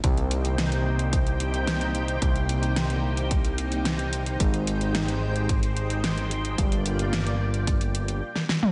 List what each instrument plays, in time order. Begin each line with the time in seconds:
0.04 analog synth bass C2, string machine A#3 D#4 G4 C5 G5, kick, closed hi-hat
0.17 closed hi-hat
0.31 closed hi-hat
0.45 closed hi-hat
0.58 snare, closed hi-hat
0.72 closed hi-hat
0.99 closed hi-hat
1.13 kick, closed hi-hat
1.27 closed hi-hat
1.40 closed hi-hat
1.54 closed hi-hat
1.67 snare, closed hi-hat
1.81 closed hi-hat
1.95 closed hi-hat
2.08 closed hi-hat
2.22 analog synth bass C2, kick, closed hi-hat
2.36 closed hi-hat
2.49 closed hi-hat
2.63 closed hi-hat
2.76 snare, closed hi-hat
2.90 closed hi-hat
3.17 closed hi-hat
3.31 kick, closed hi-hat
3.45 closed hi-hat
3.58 closed hi-hat
3.72 closed hi-hat
3.85 snare, closed hi-hat
3.99 closed hi-hat
4.13 closed hi-hat
4.26 closed hi-hat
4.40 analog synth bass G#1, string machine G#3 C5 G5, kick, closed hi-hat
4.54 closed hi-hat
4.67 closed hi-hat
4.81 closed hi-hat
4.95 snare, closed hi-hat
5.08 closed hi-hat
5.36 closed hi-hat
5.49 kick, closed hi-hat
5.63 closed hi-hat
5.77 closed hi-hat
5.90 closed hi-hat
6.04 snare, closed hi-hat
6.18 closed hi-hat
6.31 closed hi-hat
6.45 closed hi-hat
6.58 analog synth bass G1, string machine A#3 F4 D5, kick, closed hi-hat
6.72 closed hi-hat
6.86 closed hi-hat
6.99 closed hi-hat
7.13 snare, closed hi-hat
7.27 closed hi-hat
7.54 closed hi-hat
7.67 kick, closed hi-hat
7.81 closed hi-hat
7.95 closed hi-hat
8.08 closed hi-hat
8.36 snare
8.49 snare
8.63 mid tom